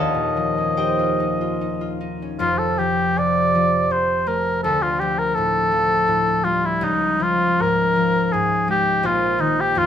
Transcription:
Already playing: harp D#1 D#2 F3 F4 G4 A4 A#4 C#5 D#5 F5 G5 A5 A#5 G6, oboe D#5
0.14 harp A#2
0.37 harp F3
0.58 harp C#4
0.77 harp D#4 G4 C5 D#5 G5
0.99 harp F4
1.20 harp D#4
1.41 harp F4
1.61 harp D#4
1.81 harp F4
2.01 harp D#4
2.22 harp C#4
2.39 harp F1 F2, oboe F4
2.58 oboe A4
2.79 harp F3, oboe G4
3.17 harp C3, oboe D5
3.55 harp F3
3.91 harp C3, oboe C5
4.27 harp A3, oboe A#4
4.63 harp D2, oboe A4
4.82 oboe F4
4.99 harp F3, oboe G4
5.19 oboe A#4
5.35 harp A2, oboe A4
5.72 harp F3
6.08 harp A2
6.44 harp G3, oboe F4
6.65 oboe E4
6.81 harp C#2, oboe D#4
7.20 harp F3, oboe F4
7.60 harp G#2, oboe A#4
7.96 harp F3
8.32 harp G#2, oboe G#4
8.68 harp G#3, oboe G4
9.03 harp A#1, oboe F4
9.39 harp D#3, oboe D#4
9.60 oboe G4
9.75 harp F2, oboe F4

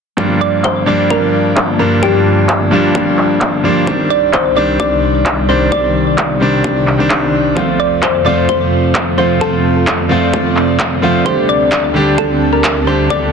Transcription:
0.17 grand piano G2 F3 G3 A#3 D4, analog synth pad G2 D3 A#3 F4 A5, kick
0.41 synth pluck D5
0.64 synth pluck C5, kick, clap
0.86 grand piano G2 F3 G3 A#3 D4, synth pluck D5
1.10 synth pluck A#4, kick
1.57 kick, clap
1.79 grand piano G2 F3 G3 A#3 D4, synth pluck A#4
2.02 grand piano G2 F3 G3 A#3 D4, synth pluck G4, kick
2.49 kick, clap
2.71 grand piano G2 F3 G3 A#3 D4
2.95 kick
3.18 clap
3.41 kick, clap
3.64 grand piano F3 G3 A#3 D4
3.86 analog synth pad C2 C3 D#3 G3 D5, grand piano D#3 C4 D4, kick
4.10 synth pluck D5
4.33 synth pluck C5, kick, clap
4.55 grand piano D#3 G3 C4 D4, synth pluck D5
4.80 synth pluck D5, kick
5.26 kick, clap
5.48 grand piano D#3 G3 C4 D4, synth pluck C5
5.71 grand piano D#3 G3 C4 D4, synth pluck D5, kick
6.18 kick, clap
6.40 grand piano D#3 G3 C4 D4
6.64 kick
6.87 clap
6.98 grand piano D#3 G3 C4 D4
7.10 kick, clap
7.55 analog synth pad F2 C4 F4 C5, grand piano F3 A3 C4 F4, kick
7.80 synth pluck D5
8.03 synth pluck C5, kick, clap
8.25 grand piano F3 A3 C4 F4, synth pluck D5
8.49 synth pluck C5, kick
8.95 kick, clap
9.18 grand piano F3 A3 C4 F4, synth pluck C5
9.40 grand piano F3 A3 C4 F4, synth pluck A4, analog synth pad D5, kick
9.87 kick, clap
10.09 grand piano F3 A3 C4 F4
10.34 kick
10.57 clap
10.80 kick, clap
11.02 grand piano F3 A3 C4 F4
11.25 analog synth pad D2 D3 G4 A5, grand piano D3 G3 A3 D4 G4, synth pluck C5, kick
11.49 synth pluck D5
11.72 kick, clap
11.94 grand piano D3 G3 D4 G4
12.18 synth pluck A4, kick
12.53 synth pluck A#4
12.64 kick, clap
12.87 grand piano D3 G3 A3 D4 G4, synth pluck C5
13.09 grand piano D3 G3 A3 D4 G4, synth pluck D5, kick

